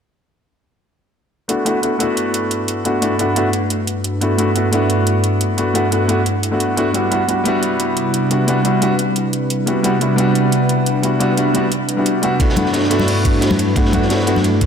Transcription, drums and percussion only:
1.49 closed hi-hat medium
1.66 closed hi-hat medium
1.83 closed hi-hat medium
2.00 closed hi-hat medium
2.17 closed hi-hat medium
2.34 closed hi-hat medium
2.51 closed hi-hat medium
2.68 closed hi-hat medium
2.85 closed hi-hat medium
3.02 closed hi-hat medium
3.19 closed hi-hat medium
3.36 closed hi-hat medium
3.53 closed hi-hat medium
3.70 closed hi-hat medium
3.87 closed hi-hat medium
4.04 closed hi-hat medium
4.21 closed hi-hat medium
4.38 closed hi-hat medium
4.56 closed hi-hat medium
4.73 closed hi-hat medium
4.90 closed hi-hat medium
5.07 closed hi-hat medium
5.24 closed hi-hat medium
5.41 closed hi-hat medium
5.58 closed hi-hat medium
5.75 closed hi-hat medium
5.92 closed hi-hat medium
6.09 closed hi-hat medium
6.26 closed hi-hat medium
6.43 closed hi-hat medium
6.60 closed hi-hat medium
6.77 closed hi-hat medium
6.94 closed hi-hat medium
7.12 closed hi-hat medium
7.29 closed hi-hat medium
7.45 closed hi-hat medium
7.63 closed hi-hat medium
7.80 closed hi-hat medium
7.97 closed hi-hat medium
8.14 closed hi-hat medium
8.31 closed hi-hat medium
8.48 closed hi-hat medium
8.65 closed hi-hat medium
8.82 closed hi-hat medium
8.99 closed hi-hat medium
9.16 closed hi-hat medium
9.33 closed hi-hat medium
9.50 closed hi-hat medium
9.67 closed hi-hat medium
9.84 closed hi-hat medium
10.01 closed hi-hat medium
10.18 closed hi-hat medium
10.35 closed hi-hat medium
10.52 closed hi-hat medium
10.69 closed hi-hat medium
10.86 closed hi-hat medium
11.03 closed hi-hat medium
11.20 closed hi-hat medium
11.37 closed hi-hat medium
11.55 closed hi-hat medium
11.72 closed hi-hat medium
11.89 closed hi-hat medium
12.06 closed hi-hat medium
12.23 closed hi-hat medium
12.40 kick loud
12.40 closed hi-hat medium
12.40 ride medium
12.49 snare medium
12.56 closed hi-hat medium
12.56 ride medium
12.56 high conga medium
12.66 snare soft
12.73 snare loud
12.73 closed hi-hat medium
12.73 ride medium
12.83 snare medium
12.90 snare soft
12.90 closed hi-hat medium
12.90 ride medium
12.99 snare medium
12.99 high conga medium
13.08 closed hi-hat medium
13.08 open hi-hat medium
13.25 kick loud
13.25 closed hi-hat medium
13.25 ride medium
13.34 ride soft
13.41 snare loud
13.41 closed hi-hat medium
13.41 ride medium
13.51 snare soft
13.51 high conga medium
13.59 closed hi-hat medium
13.59 ride medium
13.76 kick loud
13.76 closed hi-hat medium
13.76 ride medium
13.85 snare soft
13.93 kick medium
13.93 closed hi-hat medium
13.93 ride medium
13.93 high conga medium
14.02 snare soft
14.10 snare loud
14.10 closed hi-hat medium
14.10 ride medium
14.19 snare soft
14.27 closed hi-hat medium
14.27 ride medium
14.36 snare soft
14.36 high conga medium
14.44 closed hi-hat medium
14.44 ride medium
14.61 kick loud
14.61 closed hi-hat medium
14.61 ride medium

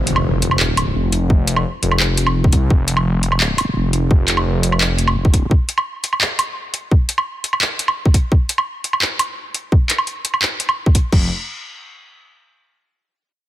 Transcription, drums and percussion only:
0.07 closed hi-hat medium
0.16 low woodblock medium
0.42 closed hi-hat medium
0.51 low woodblock medium
0.60 clap loud
0.77 closed hi-hat medium
0.77 low woodblock medium
1.12 closed hi-hat medium
1.30 kick loud
1.48 closed hi-hat medium
1.56 low woodblock medium
1.83 closed hi-hat medium
1.91 low woodblock medium
2.00 clap loud
2.17 closed hi-hat medium
2.27 low woodblock medium
2.44 kick loud
2.53 kick medium
2.53 closed hi-hat medium
2.70 kick loud
2.88 closed hi-hat medium
2.97 low woodblock medium
3.23 closed hi-hat medium
3.32 low woodblock soft
3.40 clap loud
3.58 closed hi-hat medium
3.58 low woodblock medium
3.93 closed hi-hat medium
4.11 kick loud
4.28 clap medium
4.28 closed hi-hat medium
4.37 low woodblock medium
4.63 closed hi-hat medium
4.72 low woodblock soft
4.81 clap loud
4.98 closed hi-hat medium
5.08 low woodblock medium
5.25 kick loud
5.34 kick medium
5.34 closed hi-hat medium
5.51 kick loud
5.69 closed hi-hat medium
5.78 low woodblock medium
6.04 closed hi-hat medium
6.13 low woodblock soft
6.21 clap loud
6.39 closed hi-hat medium
6.39 low woodblock medium
6.74 closed hi-hat medium
6.91 kick loud
7.09 closed hi-hat medium
7.18 low woodblock medium
7.44 closed hi-hat medium
7.53 low woodblock medium
7.61 clap loud
7.79 closed hi-hat medium
7.88 low woodblock medium
8.06 kick loud
8.14 kick medium
8.14 closed hi-hat medium
8.32 kick loud
8.49 closed hi-hat medium
8.58 low woodblock medium
8.84 closed hi-hat medium
8.93 low woodblock medium
9.02 clap loud
9.19 closed hi-hat medium
9.19 low woodblock medium
9.54 closed hi-hat medium
9.72 kick loud
9.90 clap medium
9.90 closed hi-hat medium
9.98 low woodblock medium
10.07 closed hi-hat soft
10.25 closed hi-hat medium
10.34 low woodblock medium
10.42 clap loud
10.60 closed hi-hat medium
10.69 low woodblock medium
10.86 kick loud
10.95 kick medium
10.95 closed hi-hat medium
11.12 kick loud
11.12 crash medium

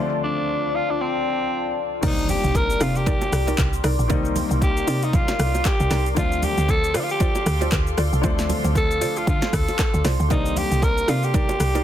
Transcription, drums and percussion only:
2.03 kick loud
2.03 crash loud
2.03 low conga medium
2.03 shaker medium
2.18 shaker medium
2.29 open hi-hat medium
2.29 low conga medium
2.29 shaker loud
2.44 shaker medium
2.55 kick medium
2.55 high bongo medium
2.55 shaker medium
2.70 shaker medium
2.80 cross-stick medium
2.80 open hi-hat medium
2.80 shaker loud
2.95 shaker medium
3.07 kick loud
3.07 low conga medium
3.07 shaker medium
3.21 low bongo medium
3.21 shaker medium
3.33 cross-stick loud
3.33 open hi-hat medium
3.33 shaker loud
3.48 low bongo medium
3.48 shaker medium
3.58 kick loud
3.58 clap loud
3.58 high bongo medium
3.58 shaker medium
3.73 shaker soft
3.84 cross-stick loud
3.84 open hi-hat medium
3.84 shaker medium
3.99 shaker soft
4.10 kick loud
4.10 low conga medium
4.10 shaker medium
4.25 shaker medium
4.36 open hi-hat medium
4.36 low conga medium
4.36 shaker loud
4.51 shaker medium
4.62 kick medium
4.62 high bongo medium
4.62 shaker medium
4.77 shaker medium
4.88 open hi-hat medium
4.88 shaker loud
5.02 shaker medium
5.13 kick loud
5.13 low conga medium
5.13 shaker medium
5.28 snare medium
5.28 low bongo medium
5.28 shaker medium
5.39 cross-stick loud
5.39 open hi-hat medium
5.39 shaker loud
5.54 low bongo medium
5.54 shaker medium
5.65 kick loud
5.65 clap loud
5.65 high bongo medium
5.65 shaker medium
5.80 shaker medium
5.91 cross-stick medium
5.91 snare medium
5.91 open hi-hat medium
5.91 shaker loud
6.06 shaker soft
6.17 kick loud
6.17 low conga medium
6.17 shaker medium
6.32 shaker medium
6.43 open hi-hat medium
6.43 low conga medium
6.43 shaker loud
6.58 shaker medium
6.68 kick medium
6.68 high bongo medium
6.68 shaker medium
6.84 shaker medium
6.94 cross-stick medium
6.94 open hi-hat medium
6.94 shaker loud
7.09 shaker medium
7.20 kick loud
7.20 low conga medium
7.20 shaker medium
7.35 low bongo medium
7.35 shaker medium
7.46 cross-stick medium
7.46 open hi-hat medium
7.46 shaker loud
7.61 low bongo medium
7.61 shaker medium
7.72 kick loud
7.72 clap loud
7.72 high bongo medium
7.72 shaker medium
7.87 shaker medium
7.98 cross-stick medium
7.98 open hi-hat medium
7.98 shaker medium
8.13 shaker soft
8.23 kick loud
8.23 low conga medium
8.23 shaker medium
8.39 snare medium
8.39 shaker medium
8.49 open hi-hat medium
8.49 low bongo medium
8.49 low conga medium
8.49 shaker loud
8.64 low bongo medium
8.64 shaker medium
8.75 kick medium
8.75 high bongo medium
8.75 shaker medium
8.91 shaker soft
9.02 open hi-hat medium
9.02 shaker loud
9.16 shaker medium
9.27 kick loud
9.27 low conga medium
9.27 shaker medium
9.42 snare medium
9.42 low bongo medium
9.42 shaker medium
9.53 kick medium
9.53 cross-stick loud
9.53 open hi-hat medium
9.53 shaker loud
9.68 low bongo medium
9.68 shaker medium
9.79 kick loud
9.79 clap loud
9.79 high bongo medium
9.79 shaker medium
9.94 shaker medium
10.05 cross-stick medium
10.05 snare medium
10.05 open hi-hat medium
10.05 shaker loud
10.20 shaker soft
10.30 kick loud
10.30 low conga medium
10.30 shaker medium
10.46 shaker medium
10.56 open hi-hat medium
10.56 low conga medium
10.56 shaker loud
10.72 shaker medium
10.82 kick medium
10.82 high bongo medium
10.82 shaker medium
10.98 shaker medium
11.08 cross-stick medium
11.08 open hi-hat medium
11.08 shaker loud
11.23 shaker medium
11.34 kick loud
11.34 low conga medium
11.34 shaker medium
11.49 low bongo medium
11.49 shaker medium
11.60 cross-stick medium
11.60 open hi-hat medium
11.60 shaker loud
11.75 low bongo medium
11.75 shaker medium

